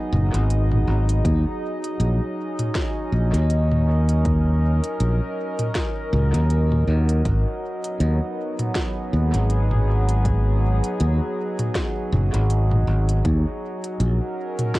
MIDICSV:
0, 0, Header, 1, 4, 480
1, 0, Start_track
1, 0, Key_signature, 5, "minor"
1, 0, Tempo, 750000
1, 800, Time_signature, 4, 2, 24, 8
1, 9466, End_track
2, 0, Start_track
2, 0, Title_t, "Ambient pad"
2, 0, Program_c, 0, 92
2, 0, Note_on_c, 0, 54, 80
2, 0, Note_on_c, 0, 59, 76
2, 0, Note_on_c, 0, 63, 82
2, 0, Note_on_c, 0, 68, 86
2, 0, Note_on_c, 0, 75, 88
2, 794, Note_off_c, 0, 54, 0
2, 800, Note_off_c, 0, 59, 0
2, 802, Note_on_c, 0, 54, 86
2, 1127, Note_on_c, 0, 61, 96
2, 1691, Note_off_c, 0, 68, 0
2, 2062, Note_on_c, 0, 70, 77
2, 4719, Note_on_c, 0, 59, 78
2, 5477, Note_on_c, 0, 68, 79
2, 5840, Note_off_c, 0, 70, 0
2, 6191, Note_off_c, 0, 61, 0
2, 8480, Note_off_c, 0, 59, 0
2, 8803, Note_on_c, 0, 70, 82
2, 8812, Note_on_c, 0, 61, 90
2, 9425, Note_off_c, 0, 68, 0
2, 9466, Note_off_c, 0, 54, 0
2, 9466, Note_off_c, 0, 61, 0
2, 9466, Note_off_c, 0, 63, 0
2, 9466, Note_off_c, 0, 70, 0
2, 9466, Note_off_c, 0, 75, 0
2, 9466, End_track
3, 0, Start_track
3, 0, Title_t, "Fingered electric bass"
3, 0, Program_c, 1, 33
3, 80, Note_on_c, 1, 30, 100
3, 200, Note_off_c, 1, 30, 0
3, 217, Note_on_c, 1, 32, 101
3, 540, Note_off_c, 1, 32, 0
3, 559, Note_on_c, 1, 32, 89
3, 775, Note_off_c, 1, 32, 0
3, 799, Note_on_c, 1, 39, 98
3, 920, Note_off_c, 1, 39, 0
3, 1278, Note_on_c, 1, 34, 96
3, 1399, Note_off_c, 1, 34, 0
3, 1999, Note_on_c, 1, 34, 78
3, 2120, Note_off_c, 1, 34, 0
3, 2134, Note_on_c, 1, 39, 99
3, 3069, Note_off_c, 1, 39, 0
3, 3201, Note_on_c, 1, 34, 99
3, 3321, Note_off_c, 1, 34, 0
3, 3922, Note_on_c, 1, 37, 99
3, 4041, Note_off_c, 1, 37, 0
3, 4057, Note_on_c, 1, 39, 96
3, 4380, Note_off_c, 1, 39, 0
3, 4399, Note_on_c, 1, 39, 89
3, 4615, Note_off_c, 1, 39, 0
3, 4641, Note_on_c, 1, 32, 96
3, 4761, Note_off_c, 1, 32, 0
3, 5121, Note_on_c, 1, 39, 98
3, 5241, Note_off_c, 1, 39, 0
3, 5844, Note_on_c, 1, 39, 80
3, 5962, Note_off_c, 1, 39, 0
3, 5980, Note_on_c, 1, 32, 94
3, 6912, Note_off_c, 1, 32, 0
3, 7043, Note_on_c, 1, 39, 98
3, 7162, Note_off_c, 1, 39, 0
3, 7759, Note_on_c, 1, 30, 101
3, 7880, Note_off_c, 1, 30, 0
3, 7897, Note_on_c, 1, 32, 100
3, 8220, Note_off_c, 1, 32, 0
3, 8239, Note_on_c, 1, 32, 98
3, 8455, Note_off_c, 1, 32, 0
3, 8479, Note_on_c, 1, 39, 97
3, 8600, Note_off_c, 1, 39, 0
3, 8960, Note_on_c, 1, 34, 101
3, 9080, Note_off_c, 1, 34, 0
3, 9466, End_track
4, 0, Start_track
4, 0, Title_t, "Drums"
4, 80, Note_on_c, 9, 45, 78
4, 144, Note_off_c, 9, 45, 0
4, 219, Note_on_c, 9, 42, 53
4, 283, Note_off_c, 9, 42, 0
4, 322, Note_on_c, 9, 42, 44
4, 386, Note_off_c, 9, 42, 0
4, 458, Note_on_c, 9, 45, 77
4, 522, Note_off_c, 9, 45, 0
4, 698, Note_on_c, 9, 42, 55
4, 762, Note_off_c, 9, 42, 0
4, 799, Note_on_c, 9, 36, 108
4, 801, Note_on_c, 9, 42, 43
4, 863, Note_off_c, 9, 36, 0
4, 865, Note_off_c, 9, 42, 0
4, 1178, Note_on_c, 9, 42, 52
4, 1242, Note_off_c, 9, 42, 0
4, 1281, Note_on_c, 9, 42, 42
4, 1345, Note_off_c, 9, 42, 0
4, 1658, Note_on_c, 9, 42, 57
4, 1658, Note_on_c, 9, 45, 77
4, 1722, Note_off_c, 9, 42, 0
4, 1722, Note_off_c, 9, 45, 0
4, 1759, Note_on_c, 9, 38, 98
4, 1759, Note_on_c, 9, 42, 44
4, 1760, Note_on_c, 9, 36, 115
4, 1823, Note_off_c, 9, 38, 0
4, 1823, Note_off_c, 9, 42, 0
4, 1824, Note_off_c, 9, 36, 0
4, 2138, Note_on_c, 9, 42, 51
4, 2202, Note_off_c, 9, 42, 0
4, 2240, Note_on_c, 9, 42, 44
4, 2304, Note_off_c, 9, 42, 0
4, 2377, Note_on_c, 9, 45, 76
4, 2441, Note_off_c, 9, 45, 0
4, 2616, Note_on_c, 9, 42, 53
4, 2680, Note_off_c, 9, 42, 0
4, 2720, Note_on_c, 9, 42, 41
4, 2721, Note_on_c, 9, 36, 110
4, 2784, Note_off_c, 9, 42, 0
4, 2785, Note_off_c, 9, 36, 0
4, 3095, Note_on_c, 9, 42, 52
4, 3159, Note_off_c, 9, 42, 0
4, 3200, Note_on_c, 9, 42, 42
4, 3264, Note_off_c, 9, 42, 0
4, 3578, Note_on_c, 9, 42, 55
4, 3578, Note_on_c, 9, 45, 79
4, 3642, Note_off_c, 9, 42, 0
4, 3642, Note_off_c, 9, 45, 0
4, 3680, Note_on_c, 9, 38, 95
4, 3680, Note_on_c, 9, 42, 43
4, 3681, Note_on_c, 9, 36, 109
4, 3744, Note_off_c, 9, 38, 0
4, 3744, Note_off_c, 9, 42, 0
4, 3745, Note_off_c, 9, 36, 0
4, 3921, Note_on_c, 9, 45, 75
4, 3985, Note_off_c, 9, 45, 0
4, 4058, Note_on_c, 9, 42, 52
4, 4122, Note_off_c, 9, 42, 0
4, 4161, Note_on_c, 9, 42, 41
4, 4225, Note_off_c, 9, 42, 0
4, 4298, Note_on_c, 9, 45, 76
4, 4362, Note_off_c, 9, 45, 0
4, 4537, Note_on_c, 9, 42, 53
4, 4601, Note_off_c, 9, 42, 0
4, 4641, Note_on_c, 9, 36, 106
4, 4641, Note_on_c, 9, 42, 39
4, 4705, Note_off_c, 9, 36, 0
4, 4705, Note_off_c, 9, 42, 0
4, 5018, Note_on_c, 9, 42, 49
4, 5082, Note_off_c, 9, 42, 0
4, 5121, Note_on_c, 9, 42, 38
4, 5185, Note_off_c, 9, 42, 0
4, 5498, Note_on_c, 9, 42, 52
4, 5498, Note_on_c, 9, 45, 75
4, 5562, Note_off_c, 9, 42, 0
4, 5562, Note_off_c, 9, 45, 0
4, 5600, Note_on_c, 9, 38, 96
4, 5600, Note_on_c, 9, 42, 43
4, 5601, Note_on_c, 9, 36, 102
4, 5664, Note_off_c, 9, 38, 0
4, 5664, Note_off_c, 9, 42, 0
4, 5665, Note_off_c, 9, 36, 0
4, 5976, Note_on_c, 9, 42, 51
4, 6040, Note_off_c, 9, 42, 0
4, 6079, Note_on_c, 9, 42, 40
4, 6143, Note_off_c, 9, 42, 0
4, 6215, Note_on_c, 9, 45, 79
4, 6279, Note_off_c, 9, 45, 0
4, 6456, Note_on_c, 9, 42, 51
4, 6520, Note_off_c, 9, 42, 0
4, 6560, Note_on_c, 9, 42, 39
4, 6561, Note_on_c, 9, 36, 103
4, 6624, Note_off_c, 9, 42, 0
4, 6625, Note_off_c, 9, 36, 0
4, 6937, Note_on_c, 9, 42, 48
4, 7001, Note_off_c, 9, 42, 0
4, 7040, Note_on_c, 9, 42, 41
4, 7104, Note_off_c, 9, 42, 0
4, 7418, Note_on_c, 9, 42, 53
4, 7418, Note_on_c, 9, 45, 79
4, 7482, Note_off_c, 9, 42, 0
4, 7482, Note_off_c, 9, 45, 0
4, 7520, Note_on_c, 9, 36, 103
4, 7521, Note_on_c, 9, 38, 87
4, 7521, Note_on_c, 9, 42, 42
4, 7584, Note_off_c, 9, 36, 0
4, 7585, Note_off_c, 9, 38, 0
4, 7585, Note_off_c, 9, 42, 0
4, 7760, Note_on_c, 9, 45, 77
4, 7824, Note_off_c, 9, 45, 0
4, 7896, Note_on_c, 9, 42, 50
4, 7960, Note_off_c, 9, 42, 0
4, 8000, Note_on_c, 9, 42, 43
4, 8064, Note_off_c, 9, 42, 0
4, 8136, Note_on_c, 9, 45, 81
4, 8200, Note_off_c, 9, 45, 0
4, 8376, Note_on_c, 9, 42, 51
4, 8440, Note_off_c, 9, 42, 0
4, 8479, Note_on_c, 9, 36, 100
4, 8479, Note_on_c, 9, 42, 38
4, 8543, Note_off_c, 9, 36, 0
4, 8543, Note_off_c, 9, 42, 0
4, 8857, Note_on_c, 9, 42, 51
4, 8921, Note_off_c, 9, 42, 0
4, 8960, Note_on_c, 9, 42, 40
4, 9024, Note_off_c, 9, 42, 0
4, 9336, Note_on_c, 9, 42, 53
4, 9336, Note_on_c, 9, 45, 86
4, 9400, Note_off_c, 9, 42, 0
4, 9400, Note_off_c, 9, 45, 0
4, 9438, Note_on_c, 9, 36, 98
4, 9440, Note_on_c, 9, 38, 95
4, 9440, Note_on_c, 9, 42, 41
4, 9466, Note_off_c, 9, 36, 0
4, 9466, Note_off_c, 9, 38, 0
4, 9466, Note_off_c, 9, 42, 0
4, 9466, End_track
0, 0, End_of_file